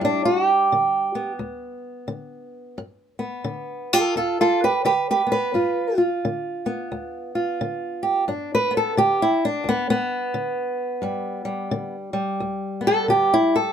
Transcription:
Already playing: G3 E4
0.01 G2 D4
0.25 F#4
0.45 G4
0.72 D3
1.15 B3
1.39 D2
2.08 D3
2.78 G2
3.19 B3
3.44 D3
3.93 F4 A4
4.16 D2 F4 A4
4.41 F4 A4
4.64 G4 B4
4.85 D3 G4 B4
5.11 G4 B4
5.27 B3
5.32 B4
5.54 G2 F4
5.98 F4
6.25 D3
6.66 B3
6.92 D2
7.35 F4
7.61 D3
8.03 G4
8.28 G2 D4
8.55 B4
8.71 B3
8.77 A4
8.97 D3 G4
9.22 E4
9.45 D4
9.64 D2
9.69 B3
9.90 B3
10.34 D3
11.02 G2 G3
11.45 G3
11.71 D3
12.13 G3
12.40 D2
12.81 B3
12.87 A4
13.08 D3 G4
13.34 E4
13.56 A4

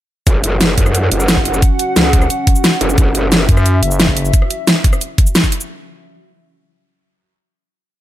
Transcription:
0.27 F#1 C#4 F#4 F#5, kick, closed hi-hat, shaker
0.44 closed hi-hat, shaker
0.61 snare, closed hi-hat, shaker
0.69 cross-stick
0.78 F#2, kick, closed hi-hat
0.86 cross-stick, shaker
0.95 closed hi-hat, shaker
1.11 F#1, closed hi-hat
1.20 shaker
1.28 snare, closed hi-hat, shaker
1.37 kick
1.45 closed hi-hat
1.54 shaker
1.62 kick, closed hi-hat, shaker
1.79 closed hi-hat, shaker
1.96 C#2, snare, closed hi-hat, shaker
2.05 cross-stick
2.13 kick, closed hi-hat
2.22 cross-stick, shaker
2.30 closed hi-hat, shaker
2.47 kick, closed hi-hat
2.56 shaker
2.64 snare, closed hi-hat, shaker
2.81 F#1, closed hi-hat
2.89 shaker
2.98 F#1 E5, kick, closed hi-hat, shaker
3.15 closed hi-hat, shaker
3.32 snare, closed hi-hat, shaker
3.40 cross-stick
3.49 F#2, kick, closed hi-hat
3.57 cross-stick, shaker
3.66 closed hi-hat, shaker
3.83 F#1, closed hi-hat
3.91 shaker
4.00 snare, closed hi-hat, shaker
4.08 kick
4.17 closed hi-hat
4.25 shaker
4.34 kick, closed hi-hat, shaker
4.42 cross-stick
4.50 closed hi-hat, shaker
4.67 snare, closed hi-hat, shaker
4.76 cross-stick
4.84 kick, closed hi-hat
4.93 cross-stick, shaker
5.01 closed hi-hat, shaker
5.18 kick, closed hi-hat
5.27 shaker
5.35 snare, closed hi-hat, shaker
5.44 kick, shaker
5.52 closed hi-hat
5.61 shaker

